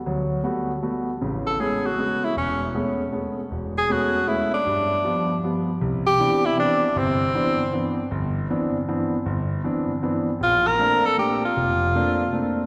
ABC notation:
X:1
M:3/4
L:1/8
Q:"Swing" 1/4=156
K:Ador
V:1 name="Tenor saxophone"
z6 | z A ^G F2 E | ^C2 z4 | z ^G F2 E D- |
D4 z2 | [K:Bblyd] z G2 E D2 | C4- C z | z6 |
z6 | F B2 A G F- | F4- F z |]
V:2 name="Grand piano"
[D,,F,]2 [G,A,B,F] z [G,A,B,F] z | [A,,,^C,]2 [^G,A,B,^C] z [G,A,B,C] z | E,,,2 [^G,A,B,^C] z [G,A,B,C] z | E,,,2 [^G,A,B,^C] z [G,A,B,C] z |
G,,2 [=F,G,B,] z [F,G,B,] z | [K:Bblyd] C,,2 [E,=B,CD] z [E,B,CD] z | [G,,,C,]2 [E,=B,CD] z [E,B,CD] z | G,,,2 [E,=B,CD] z [E,B,CD] z |
G,,,2 [E,=B,CD] z [E,B,CD] z | B,,,2 [A,B,CD] z [A,B,CD] z | F,,,2 [A,B,CD] z [A,B,CD] z |]